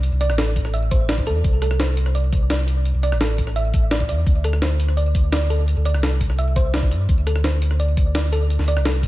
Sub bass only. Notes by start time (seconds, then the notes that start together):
Already playing: C2
0.12 C2
0.30 A1
1.27 E2
1.44 C2
2.94 C2
3.12 A1
4.09 E2
4.27 D2
5.77 D2
5.95 C2
6.91 G2
7.09 D2
8.59 D2
8.77 C2